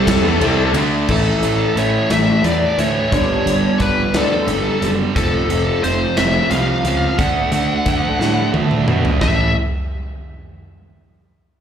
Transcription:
Already playing: picked electric bass C2, distorted electric guitar C3 G3 C4, lead electric guitar A4
0.07 kick, snare, ride
0.23 picked electric bass E2, distorted electric guitar E3 B3
0.40 picked electric bass C2, distorted electric guitar C3 G3 C4, ride
0.73 picked electric bass D2, distorted electric guitar D3 A3 D4, ride
1.08 picked electric bass A1, distorted electric guitar A2 E3 A3, lead electric guitar A4, kick, crash
1.42 picked electric bass A1, distorted electric guitar A2 E3 A3, closed hi-hat
1.76 picked electric bass A1, distorted electric guitar A2 E3 A3, lead electric guitar C#5, closed hi-hat
2.10 picked electric bass A1, distorted electric guitar A2 E3 A3, lead electric guitar E5, snare, closed hi-hat
2.44 picked electric bass E2, distorted electric guitar A2 E3 A3, lead electric guitar D5, closed hi-hat
2.77 picked electric bass D2, distorted electric guitar A2 E3 A3, lead electric guitar C#5, closed hi-hat
3.11 picked electric bass G1, distorted electric guitar G2 D3 G3, clean electric guitar B3 D4, lead electric guitar C#5, kick, closed hi-hat
3.45 picked electric bass G1, distorted electric guitar G2 D3 G3, closed hi-hat
3.79 picked electric bass G1, distorted electric guitar G2 D3 G3, lead electric guitar B4, kick, closed hi-hat
4.13 picked electric bass D2, distorted electric guitar G2 D3 G3, clean electric guitar B3 D4, snare, closed hi-hat
4.18 lead electric guitar A4
4.47 picked electric bass G1, distorted electric guitar G2 D3 G3, clean electric guitar B3, closed hi-hat
4.81 picked electric bass F#1, distorted electric guitar G2 D3 G3, clean electric guitar B3, closed hi-hat
5.15 picked electric bass F1, distorted electric guitar F2 C3 F3, lead electric guitar A4, kick, closed hi-hat
5.49 picked electric bass F1, distorted electric guitar F2 C3 F3, closed hi-hat
5.83 picked electric bass F1, distorted electric guitar F2 C3 F3, lead electric guitar C5, closed hi-hat
6.17 picked electric bass F1, distorted electric guitar F2 C3 F3, lead electric guitar E5, snare, closed hi-hat
6.51 picked electric bass C2, distorted electric guitar F2 C3 F3, lead electric guitar F5, closed hi-hat
6.84 picked electric bass C#2, distorted electric guitar F2 C3 F3, closed hi-hat
7.18 picked electric bass D2, distorted electric guitar D3 A3 D4, lead electric guitar F#5, kick, closed hi-hat
7.52 picked electric bass D2, distorted electric guitar D3 A3 D4, closed hi-hat
7.86 picked electric bass D2, distorted electric guitar D3 A3 D4, kick, closed hi-hat
8.19 picked electric bass A2, distorted electric guitar D3 A3 D4, snare
8.52 picked electric bass D2, distorted electric guitar D3 A3 D4, high tom
8.71 mid tom
8.86 picked electric bass B2, distorted electric guitar D3 A3 D4, mid tom
9.05 floor tom
9.20 picked electric bass A1, distorted electric guitar A2 E3 A3, lead electric guitar E5, kick, snare

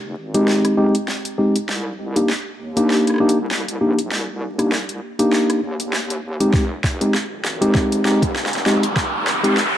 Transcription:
Already playing: wobble bass F1
0.17 wobble bass G#1
0.34 tine electric piano G#3 C4 D#4 G4, closed hi-hat
0.48 snare
0.65 cross-stick, closed hi-hat
0.77 wobble bass D#1, tine electric piano G#3 C4 D#4 G4
0.95 closed hi-hat
1.08 snare
1.25 closed hi-hat
1.38 tine electric piano G#3 C4 D#4 G4
1.56 closed hi-hat
1.69 wobble bass C2, snare
2.16 tine electric piano A#3 D4 D#4 G4, closed hi-hat
2.29 snare
2.60 wobble bass D#2
2.77 tine electric piano A#3 D4 D#4 G4, closed hi-hat
2.90 snare
3.07 cross-stick, closed hi-hat
3.10 cross-stick
3.14 cross-stick
3.16 cross-stick
3.18 wobble bass A#1, tine electric piano A#3 D4 D#4 G4, cross-stick
3.29 closed hi-hat
3.38 wobble bass C2
3.51 snare
3.68 closed hi-hat
3.81 wobble bass A#1, tine electric piano A#3 D4 D#4 G4
3.99 closed hi-hat
4.11 wobble bass C2, snare
4.59 wobble bass C2, tine electric piano A#3 D4 D#4 G4, cross-stick, closed hi-hat
4.72 snare
4.89 closed hi-hat
5.19 tine electric piano A#3 D4 D#4 G4, closed hi-hat
5.32 snare
5.50 cross-stick, closed hi-hat
5.63 wobble bass D#2
5.80 closed hi-hat
5.93 snare
6.10 closed hi-hat
6.40 tine electric piano G#3 C4 D#4 G4, closed hi-hat
6.53 wobble bass F1, kick, snare, riser
6.84 kick, snare
7.01 tine electric piano G#3 C4 D#4 G4, closed hi-hat
7.14 snare
7.44 wobble bass G#1, snare
7.61 tine electric piano G#3 C4 D#4 G4, closed hi-hat
7.75 kick, snare
7.92 closed hi-hat
8.05 wobble bass D#1, tine electric piano G#3 C4 D#4 G4, snare
8.22 wobble bass F1, kick, closed hi-hat
8.36 snare
8.46 snare
8.53 snare, closed hi-hat
8.66 wobble bass D#1, tine electric piano G#3 C4 D#4 G4, snare
8.83 closed hi-hat
8.96 wobble bass F1, kick, snare
9.27 snare
9.44 wobble bass F1, tine electric piano G#3 C4 D#4 G4, closed hi-hat
9.57 snare

